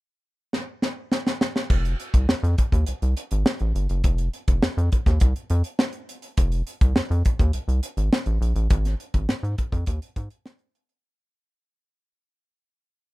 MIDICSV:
0, 0, Header, 1, 3, 480
1, 0, Start_track
1, 0, Tempo, 584226
1, 1400, Time_signature, 4, 2, 24, 8
1, 10790, End_track
2, 0, Start_track
2, 0, Title_t, "Analog synth bass"
2, 0, Program_c, 0, 38
2, 1397, Note_on_c, 0, 29, 86
2, 1600, Note_off_c, 0, 29, 0
2, 1757, Note_on_c, 0, 36, 81
2, 1860, Note_off_c, 0, 36, 0
2, 1878, Note_on_c, 0, 41, 46
2, 1927, Note_off_c, 0, 41, 0
2, 1997, Note_on_c, 0, 41, 105
2, 2100, Note_off_c, 0, 41, 0
2, 2237, Note_on_c, 0, 39, 84
2, 2340, Note_off_c, 0, 39, 0
2, 2365, Note_on_c, 0, 36, 46
2, 2412, Note_off_c, 0, 36, 0
2, 2484, Note_on_c, 0, 36, 73
2, 2584, Note_off_c, 0, 36, 0
2, 2725, Note_on_c, 0, 32, 83
2, 2825, Note_off_c, 0, 32, 0
2, 2964, Note_on_c, 0, 33, 80
2, 3064, Note_off_c, 0, 33, 0
2, 3082, Note_on_c, 0, 31, 77
2, 3183, Note_off_c, 0, 31, 0
2, 3204, Note_on_c, 0, 30, 82
2, 3304, Note_off_c, 0, 30, 0
2, 3321, Note_on_c, 0, 29, 101
2, 3523, Note_off_c, 0, 29, 0
2, 3679, Note_on_c, 0, 29, 78
2, 3781, Note_off_c, 0, 29, 0
2, 3801, Note_on_c, 0, 41, 54
2, 3849, Note_off_c, 0, 41, 0
2, 3922, Note_on_c, 0, 41, 95
2, 4023, Note_off_c, 0, 41, 0
2, 4161, Note_on_c, 0, 39, 93
2, 4262, Note_off_c, 0, 39, 0
2, 4284, Note_on_c, 0, 36, 91
2, 4383, Note_off_c, 0, 36, 0
2, 4521, Note_on_c, 0, 41, 104
2, 4621, Note_off_c, 0, 41, 0
2, 5240, Note_on_c, 0, 29, 92
2, 5440, Note_off_c, 0, 29, 0
2, 5597, Note_on_c, 0, 36, 88
2, 5698, Note_off_c, 0, 36, 0
2, 5837, Note_on_c, 0, 41, 90
2, 5938, Note_off_c, 0, 41, 0
2, 6075, Note_on_c, 0, 39, 88
2, 6176, Note_off_c, 0, 39, 0
2, 6191, Note_on_c, 0, 36, 43
2, 6241, Note_off_c, 0, 36, 0
2, 6308, Note_on_c, 0, 36, 74
2, 6412, Note_off_c, 0, 36, 0
2, 6549, Note_on_c, 0, 32, 81
2, 6652, Note_off_c, 0, 32, 0
2, 6789, Note_on_c, 0, 33, 80
2, 6892, Note_off_c, 0, 33, 0
2, 6909, Note_on_c, 0, 34, 88
2, 7012, Note_off_c, 0, 34, 0
2, 7029, Note_on_c, 0, 33, 92
2, 7132, Note_off_c, 0, 33, 0
2, 7152, Note_on_c, 0, 32, 94
2, 7353, Note_off_c, 0, 32, 0
2, 7511, Note_on_c, 0, 32, 72
2, 7612, Note_off_c, 0, 32, 0
2, 7631, Note_on_c, 0, 44, 54
2, 7679, Note_off_c, 0, 44, 0
2, 7748, Note_on_c, 0, 44, 85
2, 7850, Note_off_c, 0, 44, 0
2, 7988, Note_on_c, 0, 41, 101
2, 8090, Note_off_c, 0, 41, 0
2, 8113, Note_on_c, 0, 39, 94
2, 8213, Note_off_c, 0, 39, 0
2, 8351, Note_on_c, 0, 44, 94
2, 8452, Note_off_c, 0, 44, 0
2, 10790, End_track
3, 0, Start_track
3, 0, Title_t, "Drums"
3, 437, Note_on_c, 9, 38, 50
3, 519, Note_off_c, 9, 38, 0
3, 676, Note_on_c, 9, 38, 65
3, 759, Note_off_c, 9, 38, 0
3, 916, Note_on_c, 9, 38, 76
3, 999, Note_off_c, 9, 38, 0
3, 1040, Note_on_c, 9, 38, 72
3, 1122, Note_off_c, 9, 38, 0
3, 1159, Note_on_c, 9, 38, 90
3, 1241, Note_off_c, 9, 38, 0
3, 1280, Note_on_c, 9, 38, 77
3, 1362, Note_off_c, 9, 38, 0
3, 1396, Note_on_c, 9, 49, 64
3, 1397, Note_on_c, 9, 36, 91
3, 1478, Note_off_c, 9, 49, 0
3, 1479, Note_off_c, 9, 36, 0
3, 1520, Note_on_c, 9, 42, 45
3, 1602, Note_off_c, 9, 42, 0
3, 1640, Note_on_c, 9, 42, 54
3, 1722, Note_off_c, 9, 42, 0
3, 1757, Note_on_c, 9, 36, 79
3, 1757, Note_on_c, 9, 42, 53
3, 1839, Note_off_c, 9, 36, 0
3, 1839, Note_off_c, 9, 42, 0
3, 1880, Note_on_c, 9, 38, 96
3, 1962, Note_off_c, 9, 38, 0
3, 2007, Note_on_c, 9, 42, 51
3, 2089, Note_off_c, 9, 42, 0
3, 2119, Note_on_c, 9, 42, 61
3, 2123, Note_on_c, 9, 36, 88
3, 2202, Note_off_c, 9, 42, 0
3, 2205, Note_off_c, 9, 36, 0
3, 2237, Note_on_c, 9, 36, 67
3, 2247, Note_on_c, 9, 42, 42
3, 2320, Note_off_c, 9, 36, 0
3, 2329, Note_off_c, 9, 42, 0
3, 2354, Note_on_c, 9, 42, 91
3, 2436, Note_off_c, 9, 42, 0
3, 2483, Note_on_c, 9, 42, 47
3, 2565, Note_off_c, 9, 42, 0
3, 2601, Note_on_c, 9, 42, 75
3, 2684, Note_off_c, 9, 42, 0
3, 2718, Note_on_c, 9, 42, 53
3, 2800, Note_off_c, 9, 42, 0
3, 2841, Note_on_c, 9, 38, 111
3, 2923, Note_off_c, 9, 38, 0
3, 2954, Note_on_c, 9, 42, 41
3, 3036, Note_off_c, 9, 42, 0
3, 3086, Note_on_c, 9, 42, 66
3, 3168, Note_off_c, 9, 42, 0
3, 3198, Note_on_c, 9, 42, 49
3, 3281, Note_off_c, 9, 42, 0
3, 3317, Note_on_c, 9, 42, 78
3, 3320, Note_on_c, 9, 36, 93
3, 3399, Note_off_c, 9, 42, 0
3, 3402, Note_off_c, 9, 36, 0
3, 3437, Note_on_c, 9, 42, 52
3, 3519, Note_off_c, 9, 42, 0
3, 3561, Note_on_c, 9, 42, 56
3, 3644, Note_off_c, 9, 42, 0
3, 3678, Note_on_c, 9, 42, 52
3, 3680, Note_on_c, 9, 36, 86
3, 3760, Note_off_c, 9, 42, 0
3, 3762, Note_off_c, 9, 36, 0
3, 3800, Note_on_c, 9, 38, 103
3, 3882, Note_off_c, 9, 38, 0
3, 3931, Note_on_c, 9, 42, 52
3, 4013, Note_off_c, 9, 42, 0
3, 4042, Note_on_c, 9, 42, 59
3, 4046, Note_on_c, 9, 36, 82
3, 4124, Note_off_c, 9, 42, 0
3, 4128, Note_off_c, 9, 36, 0
3, 4159, Note_on_c, 9, 36, 83
3, 4162, Note_on_c, 9, 38, 29
3, 4165, Note_on_c, 9, 42, 44
3, 4241, Note_off_c, 9, 36, 0
3, 4244, Note_off_c, 9, 38, 0
3, 4248, Note_off_c, 9, 42, 0
3, 4273, Note_on_c, 9, 42, 96
3, 4283, Note_on_c, 9, 36, 92
3, 4355, Note_off_c, 9, 42, 0
3, 4365, Note_off_c, 9, 36, 0
3, 4402, Note_on_c, 9, 42, 46
3, 4484, Note_off_c, 9, 42, 0
3, 4516, Note_on_c, 9, 42, 65
3, 4598, Note_off_c, 9, 42, 0
3, 4633, Note_on_c, 9, 42, 52
3, 4715, Note_off_c, 9, 42, 0
3, 4756, Note_on_c, 9, 38, 102
3, 4838, Note_off_c, 9, 38, 0
3, 4869, Note_on_c, 9, 42, 40
3, 4951, Note_off_c, 9, 42, 0
3, 5003, Note_on_c, 9, 42, 65
3, 5085, Note_off_c, 9, 42, 0
3, 5113, Note_on_c, 9, 42, 49
3, 5195, Note_off_c, 9, 42, 0
3, 5235, Note_on_c, 9, 42, 77
3, 5239, Note_on_c, 9, 36, 91
3, 5318, Note_off_c, 9, 42, 0
3, 5321, Note_off_c, 9, 36, 0
3, 5355, Note_on_c, 9, 42, 49
3, 5437, Note_off_c, 9, 42, 0
3, 5478, Note_on_c, 9, 42, 62
3, 5560, Note_off_c, 9, 42, 0
3, 5596, Note_on_c, 9, 42, 49
3, 5597, Note_on_c, 9, 36, 90
3, 5679, Note_off_c, 9, 36, 0
3, 5679, Note_off_c, 9, 42, 0
3, 5716, Note_on_c, 9, 38, 97
3, 5798, Note_off_c, 9, 38, 0
3, 5847, Note_on_c, 9, 42, 50
3, 5929, Note_off_c, 9, 42, 0
3, 5956, Note_on_c, 9, 42, 66
3, 5962, Note_on_c, 9, 36, 92
3, 6038, Note_off_c, 9, 42, 0
3, 6044, Note_off_c, 9, 36, 0
3, 6075, Note_on_c, 9, 36, 85
3, 6082, Note_on_c, 9, 42, 43
3, 6157, Note_off_c, 9, 36, 0
3, 6164, Note_off_c, 9, 42, 0
3, 6190, Note_on_c, 9, 42, 85
3, 6272, Note_off_c, 9, 42, 0
3, 6316, Note_on_c, 9, 42, 48
3, 6398, Note_off_c, 9, 42, 0
3, 6432, Note_on_c, 9, 42, 69
3, 6514, Note_off_c, 9, 42, 0
3, 6550, Note_on_c, 9, 42, 51
3, 6632, Note_off_c, 9, 42, 0
3, 6676, Note_on_c, 9, 38, 108
3, 6758, Note_off_c, 9, 38, 0
3, 6786, Note_on_c, 9, 42, 42
3, 6868, Note_off_c, 9, 42, 0
3, 6920, Note_on_c, 9, 42, 64
3, 7003, Note_off_c, 9, 42, 0
3, 7030, Note_on_c, 9, 42, 47
3, 7112, Note_off_c, 9, 42, 0
3, 7149, Note_on_c, 9, 42, 75
3, 7152, Note_on_c, 9, 36, 101
3, 7231, Note_off_c, 9, 42, 0
3, 7235, Note_off_c, 9, 36, 0
3, 7273, Note_on_c, 9, 42, 55
3, 7278, Note_on_c, 9, 38, 29
3, 7355, Note_off_c, 9, 42, 0
3, 7360, Note_off_c, 9, 38, 0
3, 7395, Note_on_c, 9, 42, 59
3, 7477, Note_off_c, 9, 42, 0
3, 7509, Note_on_c, 9, 42, 53
3, 7510, Note_on_c, 9, 36, 82
3, 7591, Note_off_c, 9, 42, 0
3, 7593, Note_off_c, 9, 36, 0
3, 7631, Note_on_c, 9, 38, 102
3, 7713, Note_off_c, 9, 38, 0
3, 7759, Note_on_c, 9, 42, 47
3, 7841, Note_off_c, 9, 42, 0
3, 7872, Note_on_c, 9, 42, 69
3, 7875, Note_on_c, 9, 36, 80
3, 7954, Note_off_c, 9, 42, 0
3, 7957, Note_off_c, 9, 36, 0
3, 7989, Note_on_c, 9, 36, 80
3, 7996, Note_on_c, 9, 42, 44
3, 8071, Note_off_c, 9, 36, 0
3, 8079, Note_off_c, 9, 42, 0
3, 8104, Note_on_c, 9, 42, 85
3, 8112, Note_on_c, 9, 36, 81
3, 8187, Note_off_c, 9, 42, 0
3, 8194, Note_off_c, 9, 36, 0
3, 8233, Note_on_c, 9, 42, 46
3, 8316, Note_off_c, 9, 42, 0
3, 8349, Note_on_c, 9, 36, 84
3, 8350, Note_on_c, 9, 42, 66
3, 8431, Note_off_c, 9, 36, 0
3, 8433, Note_off_c, 9, 42, 0
3, 8467, Note_on_c, 9, 42, 55
3, 8549, Note_off_c, 9, 42, 0
3, 8590, Note_on_c, 9, 38, 112
3, 8673, Note_off_c, 9, 38, 0
3, 8701, Note_on_c, 9, 42, 43
3, 8783, Note_off_c, 9, 42, 0
3, 8833, Note_on_c, 9, 42, 71
3, 8915, Note_off_c, 9, 42, 0
3, 8947, Note_on_c, 9, 42, 46
3, 9029, Note_off_c, 9, 42, 0
3, 10790, End_track
0, 0, End_of_file